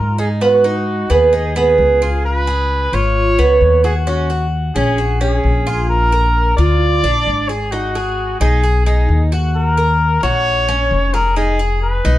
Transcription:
0.00 1.03 G#2 medium
0.00 0.17 F4 medium
0.00 0.15 A#4 medium
0.18 0.41 D#4 medium
0.18 0.29 G#4 medium
0.41 0.64 B3 medium
0.41 1.13 F#4 medium
0.64 1.09 D#4 medium
1.10 1.74 D#2 medium
1.10 1.32 B3 medium
1.10 1.56 G#4 medium
1.33 1.55 D#4 medium
1.56 2.00 B3 medium
1.56 2.21 G#4 medium
1.78 2.86 C#2 medium
2.02 2.46 F4 medium
2.25 2.96 B4 medium
2.47 2.92 G#4 medium
2.92 3.35 G#1 medium
2.92 3.37 F4 medium
2.92 3.84 C#5 loud
3.38 3.60 C#2 medium
3.38 3.83 B3 medium
3.61 4.69 D#2 medium
3.84 4.06 F#4 medium
3.84 3.95 G#4 medium
4.07 4.29 C#4 medium
4.07 4.46 F#4 medium
4.30 4.74 F#4 medium
4.75 5.40 A#1 medium
4.75 4.98 C#4 medium
4.75 5.18 G#4 medium
4.98 5.20 F#4 medium
5.21 5.65 C#4 medium
5.21 5.86 G#4 medium
5.44 6.52 A#1 medium
5.67 6.11 F4 medium
5.89 6.54 A#4 medium
6.12 6.57 A#4 medium
6.57 7.00 D2 medium
6.57 7.02 F4 medium
6.57 7.50 D5 loud
7.03 7.25 A#1 medium
7.03 7.48 D4 medium
7.26 8.34 G#1 medium
7.49 7.73 G#4 medium
7.49 7.71 G#4 medium
7.71 7.94 D#4 medium
7.71 8.40 F#4 medium
7.95 8.39 G#4 medium
8.40 9.05 B1 medium
8.40 8.63 D#4 medium
8.40 8.83 G#4 medium
8.63 8.86 G#4 medium
8.86 9.30 D#4 medium
8.86 9.25 G#4 medium
9.09 10.17 D#2 medium
9.32 9.76 F#4 medium
9.56 10.19 A#4 medium
9.77 10.22 A#4 medium
10.22 10.87 A#1 medium
10.22 10.67 F#4 medium
10.22 11.16 C#5 loud
10.68 11.13 C#4 medium
10.91 11.99 F1 medium
11.14 11.36 G#4 medium
11.14 11.36 A#4 medium
11.36 11.59 D#4 medium
11.36 11.79 G#4 loud
11.59 12.04 G#4 medium
11.82 12.18 B4 medium
12.04 12.18 B1 medium
12.04 12.18 D#4 medium

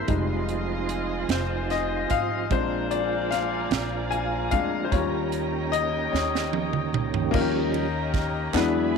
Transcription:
0.00 2.46 C4 medium
0.00 2.45 C6 medium
0.07 1.25 F1 medium
0.07 4.88 F3 medium
0.07 0.61 G3 soft
0.07 0.62 G#3 soft
0.07 2.48 D#4 medium
0.07 0.62 D#4 medium
0.07 4.88 F4 medium
0.07 2.48 D#5 medium
0.07 2.47 F5 medium
0.07 2.47 G#5 medium
0.07 kick loud
0.07 closed hi-hat medium
0.49 closed hi-hat medium
0.89 closed hi-hat medium
1.29 2.05 F1 loud
1.29 1.68 C5 medium
1.29 snare loud
1.29 closed hi-hat medium
1.70 2.08 D#5 medium
1.70 snare soft
1.70 closed hi-hat soft
2.10 2.47 G#1 medium
2.10 2.52 F5 loud
2.10 kick medium
2.10 closed hi-hat medium
2.50 3.67 A#1 loud
2.50 4.51 G#3 medium
2.50 7.30 A#3 medium
2.50 4.51 C4 soft
2.50 4.90 D4 medium
2.50 4.51 D4 medium
2.50 2.92 C5 medium
2.50 4.90 D5 medium
2.50 4.90 F5 medium
2.50 4.90 G#5 medium
2.50 7.30 A#5 medium
2.50 kick loud
2.50 closed hi-hat medium
2.91 3.28 D5 medium
2.91 closed hi-hat medium
3.31 3.40 F5 medium
3.31 snare soft
3.31 closed hi-hat medium
3.71 4.47 A#1 loud
3.71 snare loud
3.71 closed hi-hat medium
4.11 4.52 G#5 medium
4.11 closed hi-hat medium
4.51 4.89 D2 medium
4.51 4.88 G#3 medium
4.51 4.88 C4 soft
4.51 4.88 D4 medium
4.51 4.82 F5 medium
4.51 kick medium
4.51 closed hi-hat medium
4.84 4.92 C5 medium
4.92 6.09 D#2 loud
4.92 7.32 D#3 medium
4.92 7.30 G3 medium
4.92 7.30 C#4 medium
4.92 7.32 C#4 medium
4.92 7.31 F4 medium
4.92 7.32 G4 medium
4.92 5.68 C#5 medium
4.92 7.32 C#5 medium
4.92 7.32 D#5 medium
4.92 7.32 G5 medium
4.92 kick loud
4.92 closed hi-hat medium
5.32 closed hi-hat medium
5.72 6.14 D#5 loud
5.72 closed hi-hat medium
6.13 6.90 D#2 medium
6.13 6.50 C#5 medium
6.13 snare medium
6.35 snare medium
6.53 high tom medium
6.73 mid tom medium
6.93 7.30 C#2 medium
6.93 mid tom medium
7.14 floor tom medium
7.31 8.51 D#2 loud
7.31 8.50 D#3 medium
7.31 7.87 F3 medium
7.31 7.88 G3 medium
7.31 8.23 A#3 loud
7.31 8.24 C#4 medium
7.31 7.88 C#4 medium
7.31 8.25 D#4 medium
7.31 7.41 F4 medium
7.31 kick loud
7.31 crash medium
7.35 8.25 A#4 loud
7.35 8.55 C#5 medium
7.35 8.54 D#5 medium
7.35 8.54 G5 medium
7.35 8.54 A#5 medium
7.41 8.28 G4 medium
7.74 ride medium
8.14 kick medium
8.14 snare soft
8.14 ride medium
8.53 8.98 E2 loud
8.53 8.98 E3 medium
8.53 8.98 F#3 medium
8.53 8.98 G#3 medium
8.53 8.98 B3 medium
8.53 8.98 D4 medium
8.53 8.98 E4 medium
8.53 8.98 G#4 medium
8.53 8.98 D5 medium
8.53 8.98 E5 medium
8.53 8.98 G#5 medium
8.53 8.98 B5 medium
8.53 snare medium
8.53 clap loud
8.57 8.98 D4 medium
8.57 8.98 B4 medium

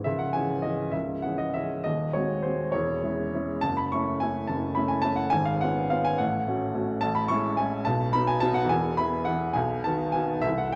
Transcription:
0.04 0.34 C#1 soft
0.04 0.34 C#2 medium
0.04 0.19 E5 medium
0.19 0.34 F#5 medium
0.33 0.61 E3 soft
0.33 0.61 C#4 soft
0.33 0.62 G#4 soft
0.33 0.63 G#5 medium
0.62 0.91 E3 soft
0.62 0.91 C#4 soft
0.62 0.91 G#4 soft
0.62 0.93 D#5 medium
0.92 1.23 C#1 soft
0.92 1.23 C#2 soft
0.92 1.23 E5 medium
1.22 1.52 E3 soft
1.22 1.52 C#4 soft
1.22 1.52 G#4 soft
1.22 1.39 F#5 medium
1.38 1.54 D#5 medium
1.54 1.82 E3 soft
1.54 1.82 C#4 soft
1.54 1.82 G#4 soft
1.54 1.84 E5 medium
1.84 2.13 D#1 soft
1.84 2.13 D#2 medium
1.84 2.13 D#5 medium
2.13 2.41 G#3 soft
2.13 2.41 C4 soft
2.13 2.41 F#4 soft
2.13 2.43 C#5 medium
2.43 2.71 G#3 soft
2.43 2.71 C4 soft
2.43 2.71 F#4 soft
2.43 2.73 C5 medium
2.72 3.03 E1 soft
2.72 3.03 E2 medium
2.72 3.61 C#5 medium
3.03 3.30 G#3 soft
3.03 3.30 C#4 soft
3.03 3.30 E4 soft
3.34 3.60 G#3 soft
3.34 3.60 C#4 soft
3.34 3.60 E4 soft
3.61 3.91 F#1 soft
3.61 3.91 F#2 medium
3.61 3.76 A5 medium
3.77 3.91 B5 medium
3.92 4.18 A3 soft
3.92 4.19 C#4 soft
3.92 4.19 E4 soft
3.92 4.20 C#6 medium
4.20 4.46 A3 soft
4.20 4.47 C#4 soft
4.20 4.47 E4 soft
4.20 4.48 G#5 medium
4.47 4.75 F#1 soft
4.47 4.75 F#2 medium
4.47 4.75 A5 medium
4.75 5.01 A3 soft
4.75 5.01 C#4 soft
4.75 5.01 E4 soft
4.75 4.89 B5 medium
4.88 5.03 G#5 medium
5.02 5.29 A3 soft
5.02 5.29 C#4 soft
5.02 5.29 E4 soft
5.02 5.17 A5 medium
5.16 5.31 F#5 medium
5.30 5.60 G#1 medium
5.30 5.60 G#2 medium
5.30 5.45 G#5 loud
5.45 5.60 F5 medium
5.61 5.88 B3 soft
5.61 5.89 C#4 soft
5.61 5.89 F4 soft
5.61 5.90 F#5 medium
5.90 6.17 B3 soft
5.90 6.17 C#4 soft
5.90 6.17 F4 soft
5.90 6.05 F5 medium
6.05 6.19 G#5 medium
6.18 6.47 A1 medium
6.18 6.46 A2 medium
6.18 7.02 F#5 medium
6.47 6.72 A3 soft
6.47 6.72 C#4 soft
6.47 6.72 F#4 soft
6.75 7.00 A3 soft
6.75 7.00 C#4 medium
6.75 7.00 F#4 medium
7.01 7.30 A1 medium
7.01 7.30 A2 medium
7.01 7.16 A5 medium
7.15 7.30 B5 medium
7.28 7.55 G#3 soft
7.28 7.56 C#4 soft
7.28 7.56 E4 medium
7.28 7.57 C#6 loud
7.57 7.84 G#3 soft
7.57 7.84 C#4 soft
7.57 7.84 E4 soft
7.57 7.86 G#5 medium
7.85 8.13 B1 medium
7.85 8.14 B2 medium
7.85 8.13 A5 medium
8.13 8.40 F#3 soft
8.13 8.40 B3 soft
8.13 8.40 D#4 medium
8.13 8.27 B5 medium
8.27 8.42 G#5 medium
8.40 8.67 F#3 medium
8.40 8.68 B3 medium
8.40 8.68 D#4 medium
8.40 8.55 A5 loud
8.54 8.69 F#5 medium
8.65 8.95 E2 medium
8.69 8.98 E1 medium
8.69 8.98 G#5 medium
8.97 9.24 E3 soft
8.97 9.25 B3 soft
8.97 9.25 E4 medium
8.97 9.26 B5 medium
9.25 9.53 E3 soft
9.25 9.53 B3 soft
9.25 9.53 E4 soft
9.25 9.55 F#5 medium
9.53 9.84 B1 medium
9.53 9.84 B2 medium
9.53 9.84 G#5 medium
9.84 10.12 D#3 soft
9.84 10.13 B3 soft
9.84 10.13 F#4 soft
9.84 10.14 A5 medium
10.12 10.41 D#3 soft
10.12 10.42 B3 soft
10.12 10.42 F#4 medium
10.12 10.43 G#5 medium
10.39 10.71 C1 medium
10.39 10.73 C2 medium
10.39 10.58 E5 loud
10.58 10.74 F#5 medium

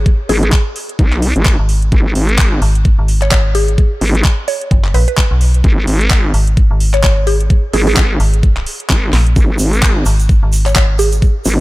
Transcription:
0.06 kick loud
0.06 closed hi-hat medium
0.29 0.51 G#1 medium
0.29 0.38 G#4 medium
0.29 open hi-hat loud
0.43 0.49 G#4 medium
0.43 closed hi-hat medium
0.52 kick loud
0.52 clap loud
0.52 closed hi-hat soft
0.76 open hi-hat loud
0.89 closed hi-hat medium
0.99 1.34 B1 loud
0.99 kick loud
0.99 closed hi-hat soft
1.12 clap soft
1.22 open hi-hat loud
1.36 1.57 G#1 loud
1.36 closed hi-hat medium
1.45 kick loud
1.45 clap loud
1.45 closed hi-hat medium
1.59 1.90 G#1 medium
1.69 open hi-hat loud
1.82 closed hi-hat medium
1.92 2.14 G#1 medium
1.92 kick loud
1.92 closed hi-hat soft
2.15 2.60 G#1 loud
2.15 open hi-hat loud
2.29 closed hi-hat medium
2.38 kick loud
2.38 clap loud
2.38 closed hi-hat soft
2.62 2.96 G#1 loud
2.62 open hi-hat loud
2.75 closed hi-hat medium
2.85 kick loud
2.85 closed hi-hat medium
2.99 3.30 G#1 loud
3.08 open hi-hat loud
3.22 3.28 C#5 medium
3.22 clap soft
3.22 closed hi-hat medium
3.31 3.77 G#1 loud
3.31 3.40 C#5 medium
3.31 kick loud
3.31 clap loud
3.31 closed hi-hat medium
3.55 3.76 G#4 loud
3.55 open hi-hat loud
3.68 closed hi-hat medium
3.78 kick loud
3.78 closed hi-hat medium
4.01 4.23 G#1 loud
4.01 open hi-hat loud
4.15 closed hi-hat medium
4.24 kick loud
4.24 clap loud
4.24 closed hi-hat soft
4.48 4.85 C#5 medium
4.48 open hi-hat loud
4.61 closed hi-hat medium
4.71 4.93 F#1 medium
4.71 kick loud
4.71 closed hi-hat medium
4.85 clap soft
4.94 5.06 A#1 loud
4.94 5.03 B4 medium
4.94 open hi-hat loud
5.08 5.14 B4 medium
5.08 closed hi-hat medium
5.17 kick loud
5.17 clap loud
5.17 closed hi-hat medium
5.31 5.63 B1 medium
5.41 open hi-hat loud
5.54 closed hi-hat medium
5.64 5.86 G#1 medium
5.64 kick loud
5.64 closed hi-hat medium
5.87 6.32 G#1 loud
5.87 open hi-hat loud
6.01 closed hi-hat medium
6.10 kick loud
6.10 clap loud
6.10 closed hi-hat medium
6.34 6.68 G#1 loud
6.34 open hi-hat loud
6.47 closed hi-hat medium
6.57 kick loud
6.57 closed hi-hat medium
6.71 7.02 G#1 loud
6.80 open hi-hat loud
6.94 7.00 C#5 medium
6.94 clap soft
6.94 closed hi-hat medium
7.04 7.49 G#1 medium
7.04 7.12 C#5 medium
7.04 kick loud
7.04 clap loud
7.04 closed hi-hat medium
7.27 7.48 G#4 medium
7.27 open hi-hat loud
7.40 closed hi-hat medium
7.50 kick loud
7.50 closed hi-hat medium
7.73 7.95 G#1 loud
7.73 7.82 G#4 medium
7.73 open hi-hat loud
7.87 7.93 G#4 medium
7.87 open hi-hat medium
7.97 8.18 G#1 loud
7.97 kick loud
7.97 clap loud
8.20 8.65 G#1 loud
8.20 open hi-hat loud
8.34 closed hi-hat medium
8.43 kick loud
8.43 closed hi-hat medium
8.57 clap soft
8.66 open hi-hat loud
8.80 closed hi-hat medium
8.90 9.11 G#1 loud
8.90 kick loud
8.90 clap loud
8.90 closed hi-hat medium
9.13 9.35 A#1 loud
9.13 snare medium
9.13 open hi-hat loud
9.27 closed hi-hat medium
9.36 9.58 G#1 medium
9.36 kick loud
9.36 closed hi-hat medium
9.36 shaker soft
9.59 10.04 G#1 medium
9.59 open hi-hat loud
9.59 shaker medium
9.73 closed hi-hat medium
9.73 shaker medium
9.82 kick loud
9.82 clap loud
9.82 closed hi-hat medium
9.82 shaker soft
10.05 10.41 G#1 loud
10.05 open hi-hat loud
10.05 shaker medium
10.20 closed hi-hat medium
10.20 shaker soft
10.29 kick loud
10.29 closed hi-hat medium
10.29 shaker soft
10.43 10.74 G#1 loud
10.53 open hi-hat loud
10.53 shaker medium
10.66 10.72 C#5 medium
10.66 clap soft
10.66 closed hi-hat medium
10.66 shaker medium
10.75 11.21 G#1 loud
10.75 10.84 C#5 medium
10.75 kick loud
10.75 clap loud
10.75 closed hi-hat medium
10.75 shaker soft
10.99 11.20 G#4 loud
10.99 open hi-hat loud
10.99 shaker medium
11.12 closed hi-hat medium
11.12 shaker medium
11.22 kick loud
11.22 closed hi-hat medium
11.22 shaker soft
11.45 11.60 G#1 loud
11.45 open hi-hat loud
11.45 shaker loud

